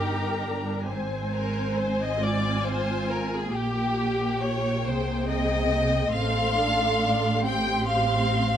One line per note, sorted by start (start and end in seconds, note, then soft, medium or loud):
0.00 0.86 G1 soft
0.00 0.85 G2 soft
0.00 0.43 D#4 soft
0.00 0.88 G4 medium
0.00 0.88 A#4 soft
0.00 0.89 A#5 soft
0.43 0.88 D4 soft
0.87 3.55 G#1 soft
0.87 3.55 G#2 soft
0.87 3.55 C4 soft
0.87 2.20 C5 soft
0.87 2.19 G#5 soft
1.32 1.74 A#4 soft
1.76 1.99 C5 soft
2.00 2.22 D#5 medium
2.21 3.55 F4 soft
2.21 2.67 D5 medium
2.21 3.52 G#5 medium
2.65 3.10 C5 medium
3.09 3.32 A#4 medium
3.33 3.55 G#4 medium
3.54 4.82 A#1 soft
3.54 4.83 A#2 soft
3.54 6.07 A#3 soft
3.54 4.42 G4 medium
3.54 4.85 G4 soft
3.54 6.08 G5 soft
4.42 4.85 C#5 medium
4.85 6.12 C2 soft
4.85 6.12 C3 soft
4.85 6.09 G#4 soft
4.85 5.28 C5 medium
5.27 6.10 D#5 medium
6.11 8.57 A1 medium
6.11 8.57 A2 soft
6.11 6.54 C4 medium
6.11 7.40 A4 soft
6.11 7.39 F5 medium
6.11 7.39 C6 soft
6.55 6.98 D4 soft
7.00 7.42 D4 soft
7.41 8.57 C4 soft
7.41 8.57 G4 soft
7.41 7.85 G5 medium
7.41 8.57 C6 medium
7.87 8.57 F5 medium